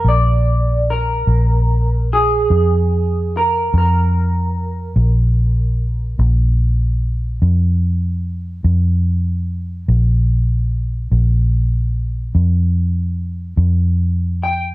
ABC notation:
X:1
M:12/8
L:1/8
Q:3/8=49
K:Bbmix
V:1 name="Clean electric guitar"
d2 B3 A3 B B3- | B3 z8 z | z8 z3 g |]
V:2 name="Fingered electric bass" clef=bass
B,,,3 B,,,3 F,,3 F,,3 | B,,,3 B,,,3 F,,3 F,,3 | B,,,3 B,,,3 F,,3 F,,3 |]